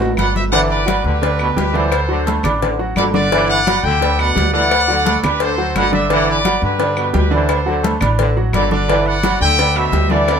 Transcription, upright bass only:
0.00 0.14 A1 loud
0.17 0.99 G1 medium
1.04 1.53 D2 loud
1.56 2.38 D2 medium
2.44 2.92 A1 loud
2.96 3.77 G1 medium
3.83 4.32 D2 loud
4.36 5.17 D2 medium
5.23 5.72 D2 medium
5.76 6.57 G1 medium
6.62 7.11 G2 loud
7.14 7.95 D2 medium
8.01 8.50 A1 loud
8.53 9.35 G1 medium
9.41 9.89 D2 loud
9.92 10.40 D2 medium

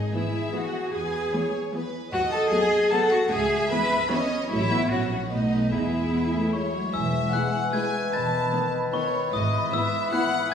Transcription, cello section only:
0.00 0.14 D#4 medium
0.14 0.54 E4 medium
0.54 0.93 F#4 medium
0.94 1.53 G#4 medium
2.13 2.21 F#4 loud
2.32 2.51 A4 loud
2.51 2.91 G#4 loud
2.92 3.12 A4 loud
3.11 3.19 F#4 medium
3.31 3.70 G#4 loud
3.71 4.10 B4 loud
4.11 4.51 C#4 loud
4.50 4.89 E4 loud
4.90 5.31 F#4 medium
5.30 5.70 D#4 medium
5.71 5.78 E4 medium
5.78 5.86 D#4 medium
5.86 6.73 E4 medium
6.94 7.27 E2 medium
8.13 8.46 E2 medium
9.33 9.66 G#2 medium

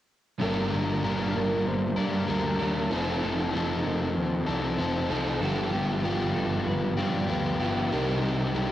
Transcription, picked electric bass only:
0.42 0.71 G1 medium
0.73 1.03 G1 medium
1.04 1.33 G1 medium
1.36 1.65 G1 medium
1.67 1.96 G1 medium
1.98 2.27 G2 medium
2.29 2.59 D2 medium
2.61 2.90 D#2 medium
2.91 3.21 F1 medium
3.23 3.53 F1 medium
3.55 3.84 F1 medium
3.86 4.16 F1 medium
4.17 4.47 D#2 medium
4.48 4.78 C2 medium
4.79 5.09 F1 medium
5.10 5.40 C2 medium
5.40 5.71 G1 medium
5.73 6.03 G1 medium
6.04 6.34 G1 medium
6.35 6.65 G1 medium
6.67 6.97 G1 medium
6.98 7.28 G2 medium
7.29 7.59 D2 medium
7.60 7.91 G1 medium
7.93 8.22 C2 medium
8.23 8.53 C2 medium
8.54 8.72 C2 medium

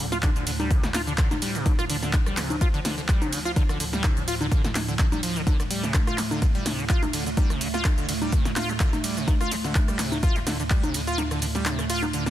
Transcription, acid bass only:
0.12 0.18 F4 loud
0.23 0.30 D3 loud
0.36 0.45 D3 medium
0.47 0.51 D3 medium
0.60 0.72 G3 medium
0.71 0.85 C3 medium
0.83 0.89 D3 loud
0.94 1.01 F4 loud
1.07 1.13 D3 loud
1.18 1.29 D3 medium
1.31 1.35 D3 medium
1.42 1.56 G3 medium
1.55 1.67 C3 medium
1.66 1.73 D3 loud
1.79 1.85 F4 loud
1.90 1.97 D3 loud
2.02 2.11 D3 medium
2.26 2.39 G3 medium
2.37 2.52 C3 medium
2.50 2.56 D3 loud
2.61 2.68 F4 loud
2.74 2.80 D3 medium
2.85 2.96 D3 medium
2.98 3.01 D3 medium
3.09 3.23 G3 medium
3.22 3.34 C3 medium
3.32 3.40 D3 loud
3.45 3.51 F4 loud
3.56 3.63 D3 loud
3.69 3.78 D3 medium
3.80 3.84 D3 medium
3.93 4.05 G3 medium
4.04 4.18 C3 medium
4.17 4.23 D3 loud
4.28 4.35 F4 loud
4.41 4.47 D3 loud
4.52 4.62 D3 medium
4.64 4.68 D3 medium
4.88 4.94 D3 medium
4.99 5.06 D3 medium
5.12 5.21 G3 medium
5.23 5.37 F3 medium
5.36 5.42 D3 loud
5.47 5.57 D3 medium
5.60 5.63 D3 medium
5.70 5.85 G3 medium
5.83 5.96 C3 medium
5.94 6.01 D3 loud
6.07 6.20 F4 loud
6.18 6.22 C3 medium
6.31 6.40 D3 medium
6.42 6.46 D3 medium
6.55 6.67 G3 medium
6.66 6.80 C3 medium
6.79 6.85 D3 loud
6.90 7.04 F4 loud
7.03 7.06 C3 medium
7.13 7.24 D3 medium
7.26 7.30 D3 medium
7.37 7.52 G3 medium
7.50 7.63 C3 medium
7.61 7.68 D3 loud
7.74 7.86 F4 loud
7.85 7.89 C3 medium
7.98 8.07 D3 medium
8.09 8.13 D3 medium
8.22 8.34 G3 medium
8.33 8.47 C3 medium
8.45 8.51 D3 loud
8.56 8.71 F4 loud
8.69 8.73 C3 medium
8.80 8.91 D3 medium
8.93 8.97 D3 medium
9.04 9.18 G3 medium
9.17 9.29 C3 medium
9.28 9.35 D3 loud
9.41 9.53 F4 loud
9.51 9.56 C3 medium
9.64 9.73 D3 medium
9.88 10.01 G3 medium
9.99 10.14 C3 medium
10.12 10.18 D3 loud
10.23 10.37 F4 loud
10.36 10.39 C3 medium
10.47 10.57 D3 medium
10.60 10.63 D3 medium
10.71 10.85 G3 medium
10.84 10.96 C3 medium
10.94 11.02 D3 loud
11.07 11.20 F4 loud
11.18 11.22 C3 medium
11.31 11.40 D3 medium
11.42 11.46 D3 medium
11.55 11.67 G3 medium
11.66 11.80 C3 medium
11.79 11.85 D3 loud
11.90 12.04 F4 loud
12.03 12.06 C3 medium
12.13 12.24 D3 medium
12.26 12.30 D3 medium

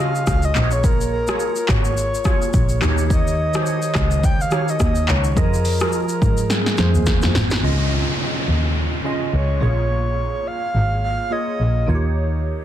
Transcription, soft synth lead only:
0.00 0.28 F5 loud
0.28 0.46 F5 loud
0.45 0.72 D#5 loud
0.73 0.86 C#5 loud
0.85 1.12 A#4 loud
1.13 1.71 A#4 loud
1.70 1.85 C#5 loud
1.86 2.78 C#5 loud
3.12 4.26 D#5 loud
4.25 4.43 G5 loud
4.41 4.71 F5 loud
4.70 5.11 D#5 loud
5.10 5.37 C#5 loud
5.38 6.53 A#4 loud
6.51 7.35 G#4 medium
9.34 10.49 C#5 medium
10.47 11.03 F5 loud
11.04 11.34 F5 loud
11.32 11.88 D#5 loud

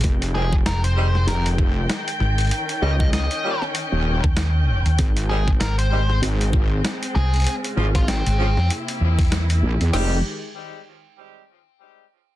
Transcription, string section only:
0.00 4.95 D#3 medium
0.00 2.47 G#3 medium
0.00 7.42 G5 medium
2.51 4.96 C#4 medium
4.98 8.66 G#3 medium
4.98 8.66 C4 medium
7.45 8.68 C#3 medium
8.69 9.92 C3 medium
8.69 9.92 A#3 medium
8.69 9.92 E4 medium
9.93 10.22 D#3 medium
9.93 10.22 G#3 medium
9.93 10.22 G4 medium

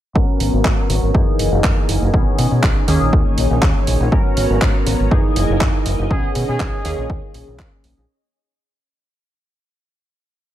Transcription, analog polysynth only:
0.15 1.10 F#3 medium
0.15 1.10 B3 medium
0.15 1.10 C#4 medium
0.15 1.11 A#4 medium
1.14 2.09 E3 medium
1.14 2.09 A#3 medium
1.14 2.09 D#4 medium
1.14 2.10 G#4 medium
2.13 2.83 D#3 medium
2.13 2.83 B3 medium
2.13 2.84 C#4 medium
2.13 2.84 G#4 medium
2.88 4.07 D#3 loud
2.88 4.07 A#3 medium
2.88 4.08 C#4 medium
2.88 4.08 G#4 loud
4.12 5.06 F#3 medium
4.12 5.07 B3 medium
4.12 5.07 C#4 medium
4.12 5.07 A#4 medium
5.11 6.06 E3 medium
5.11 6.06 A#3 medium
5.11 6.06 D#4 medium
5.11 6.06 G#4 medium
6.10 6.80 D#3 medium
6.10 6.80 B3 medium
6.10 6.80 C#4 medium
6.10 6.81 G#4 medium
6.84 8.04 D#3 medium
6.84 8.04 A#3 medium
6.84 8.04 C#4 medium
6.84 8.05 G#4 loud

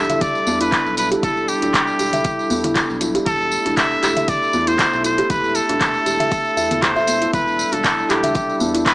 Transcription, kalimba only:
0.10 0.16 E5 medium
0.47 0.60 B3 loud
0.61 0.71 E4 loud
0.72 0.85 E4 medium
0.98 1.05 E4 medium
1.11 1.18 G4 loud
1.23 1.31 E4 medium
1.62 1.73 D4 loud
1.99 2.12 G4 medium
2.13 2.20 E5 medium
2.50 2.64 B3 loud
2.64 2.75 E4 loud
3.01 3.09 E4 medium
3.15 3.21 G4 loud
3.26 3.34 E4 medium
3.66 3.76 D4 loud
4.03 4.15 G4 medium
4.17 4.23 E5 medium
4.54 4.67 B3 loud
4.68 4.78 E4 loud
5.05 5.12 E4 medium
5.19 5.25 G4 loud
5.30 5.37 E4 medium
5.69 5.80 D4 loud
6.06 6.19 G4 medium
6.20 6.26 E5 medium
6.57 6.69 E5 medium
6.71 6.82 B3 medium
6.82 6.96 E4 medium
6.96 7.07 E5 loud
7.08 7.21 B3 medium
7.22 7.32 E4 medium
7.33 7.41 E4 medium
7.72 7.83 D4 loud
8.09 8.22 G4 medium
8.23 8.30 E5 medium
8.60 8.74 B3 loud
8.74 8.84 E4 loud
8.85 8.94 E4 medium

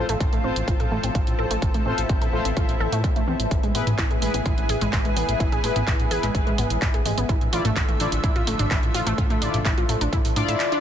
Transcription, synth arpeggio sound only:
0.09 0.14 A3 loud
0.33 0.40 A3 medium
0.44 0.56 C4 medium
0.68 0.76 F4 medium
0.80 0.84 A4 medium
0.91 0.96 A3 medium
1.04 1.11 C4 medium
1.15 1.23 F4 medium
1.39 1.43 A4 loud
1.51 1.55 A3 loud
1.74 1.82 A3 medium
1.86 1.97 C4 medium
2.10 2.18 F4 medium
2.22 2.26 A4 medium
2.33 2.38 A3 medium
2.45 2.53 C4 medium
2.57 2.65 F4 medium
2.80 2.85 A4 loud
2.93 2.97 A3 loud
3.16 3.24 A3 medium
3.28 3.39 C4 medium
3.63 3.71 G#3 medium
3.75 3.86 B3 medium
3.98 4.07 E4 medium
4.11 4.15 G#4 medium
4.22 4.27 G#3 medium
4.34 4.42 B3 medium
4.46 4.54 E4 medium
4.69 4.74 G#4 loud
4.81 4.86 G#3 loud
5.05 5.13 G#3 medium
5.17 5.28 B3 medium
5.40 5.48 E4 medium
5.52 5.57 G#4 medium
5.64 5.69 G#3 medium
5.76 5.84 B3 medium
5.87 5.96 E4 medium
6.11 6.16 G#4 loud
6.23 6.28 G#3 loud
6.47 6.54 G#3 medium
6.58 6.70 B3 medium
6.82 6.90 E4 medium
6.94 6.99 G#4 medium
7.06 7.10 G#3 medium
7.18 7.25 B3 medium
7.29 7.37 E4 medium
7.53 7.58 F4 loud
7.65 7.70 A3 loud
7.89 7.96 A3 medium
8.00 8.12 D4 medium
8.24 8.32 E4 medium
8.36 8.40 F4 medium
8.47 8.52 A3 medium
8.59 8.67 D4 medium
8.71 8.79 E4 medium
8.95 8.99 F4 loud
9.07 9.11 A3 loud
9.30 9.38 A3 medium
9.42 9.53 D4 medium
9.65 9.73 E4 medium
9.78 9.82 F4 medium
9.89 9.94 A3 medium
10.01 10.09 D4 medium
10.13 10.21 E4 medium
10.36 10.41 D4 medium
10.48 10.56 E5 medium
10.72 10.77 D4 loud

